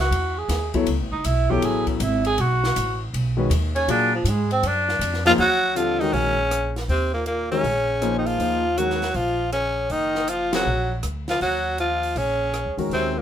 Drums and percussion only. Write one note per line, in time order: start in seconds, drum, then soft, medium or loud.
0.12 ride medium
0.49 snare soft
0.49 hi-hat pedal medium
0.49 ride medium
0.74 kick medium
0.74 ride soft
0.87 ride medium
1.24 hi-hat pedal medium
1.24 ride medium
1.49 kick soft
1.62 ride medium
1.87 kick medium
1.87 ride soft
2.00 hi-hat pedal medium
2.00 ride medium
2.25 ride medium
2.38 ride medium
2.64 snare medium
2.76 hi-hat pedal medium
2.76 ride medium
3.14 ride medium
3.51 hi-hat pedal medium
3.51 ride medium
3.76 ride soft
3.88 ride medium
4.25 hi-hat pedal medium
4.25 ride medium
4.51 ride soft
4.63 ride medium
4.89 snare soft
5.01 hi-hat pedal medium
5.01 ride medium
5.14 snare soft
5.26 snare soft
5.26 ride soft
5.38 open hi-hat soft
5.76 closed hi-hat soft
6.01 open hi-hat soft
6.14 open hi-hat soft
6.51 cross-stick medium
6.51 closed hi-hat medium
6.76 snare soft
6.76 open hi-hat soft
6.89 open hi-hat soft
7.26 closed hi-hat soft
7.52 open hi-hat soft
7.64 open hi-hat soft
8.02 cross-stick medium
8.02 closed hi-hat medium
8.27 open hi-hat soft
8.40 open hi-hat soft
8.78 closed hi-hat soft
8.90 snare soft
9.02 snare soft
9.02 open hi-hat soft
9.14 open hi-hat soft
9.53 cross-stick medium
9.53 closed hi-hat soft
9.90 open hi-hat soft
10.15 snare soft
10.28 closed hi-hat soft
10.53 snare medium
10.53 ride medium
11.03 cross-stick medium
11.03 closed hi-hat medium
11.28 snare soft
11.28 open hi-hat soft
11.41 open hi-hat soft
11.78 closed hi-hat soft
12.03 open hi-hat soft
12.16 open hi-hat soft
12.54 cross-stick medium
12.54 closed hi-hat soft
12.79 open hi-hat soft
12.91 open hi-hat soft